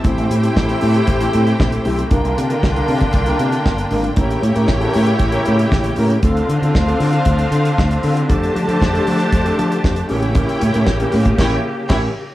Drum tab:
CC |----------------|----------------|----------------|----------------|
HH |xxxx-xoxxxxx-xox|xxxx-xoxxxxx-xox|xxxx-xoxxxxx-xox|xxxx-xoxxxxx-xox|
SD |----o-------o---|----o-------o---|----o-o-----o---|----o-------o---|
BD |o---o---o---o---|o---o--oo---o---|o---o---o---o---|o---o---o---o---|

CC |----------------|--------x---x---|
HH |xxxx-xoxxxxx-xox|xxxx-xox--------|
SD |----o-------o---|----o---o---o---|
BD |o---o---o---o---|o---o--oo---o---|